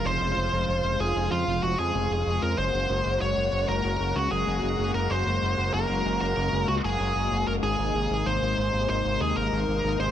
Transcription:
<<
  \new Staff \with { instrumentName = "Lead electric guitar" } { \time 4/4 \key ges \lydian \tempo 4 = 95 c''4. aes'8 f'8 ges'16 aes'4 bes'16 | c''4 des''8. bes'8. ges'16 aes'4 bes'16 | c''4 bes'8. bes'8. ges'16 aes'4 bes'16 | aes'4 c''4 c''8 aes'16 bes'4 c''16 | }
  \new Staff \with { instrumentName = "Analog synth pad" } { \clef bass \time 4/4 \key ges \lydian << { <des f f'>1 | <des ges'>1~ | <des ges'>1 | <c ees'>1 | } \\ { aes1 | bes1~ | bes1~ | bes1 | } >> }
  \new Staff \with { instrumentName = "Analog synth bass" } { \clef bass \time 4/4 \key ges \lydian f,,16 f,,16 f,,16 f,,16 f,,16 f,,16 f,,16 f,,16 f,16 f,,16 f,,16 f,16 f,,16 f,,16 f,,16 f,16 | ges,,16 ges,,16 ges,,16 ges,,16 ges,,16 ges,,16 ges,,16 ges,,16 ges,,16 ges,,16 des,16 ges,,16 ges,,16 ges,,16 ges,,16 ges,,16 | ges,,16 ges,,16 ges,,16 ges,,16 ges,,16 ges,,16 ges,,16 ges,,16 ges,,16 ges,,16 des,16 ges,,16 ges,,16 ges,,16 ges,,16 ges,,16 | aes,,16 aes,,16 aes,,16 aes,,16 aes,,16 aes,,16 aes,,16 aes,,16 aes,,16 aes,,16 ees,16 aes,,16 aes,,16 aes,,16 aes,,16 aes,,16 | }
>>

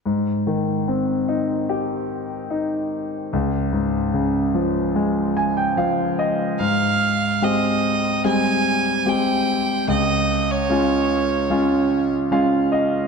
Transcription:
<<
  \new Staff \with { instrumentName = "Violin" } { \time 4/4 \key aes \major \tempo 4 = 74 r1 | r1 | f''4 ees''4 aes''4 g''4 | ees''8. des''2 r4 r16 | }
  \new Staff \with { instrumentName = "Grand piano" } { \time 4/4 \key aes \major r1 | r2 r8 aes''16 g''16 f''8 ees''8 | r1 | r2. f''8 ees''8 | }
  \new Staff \with { instrumentName = "Grand piano" } { \clef bass \time 4/4 \key aes \major aes,8 ees8 c'8 ees'8 g'4 ees'4 | des,8 aes,8 des8 f8 aes4 f4 | aes,4 <aes c' g'>4 <g aes c'>4 <aes c' g'>4 | des,4 <aes des' f'>4 <aes des' f'>4 <aes des' f'>4 | }
>>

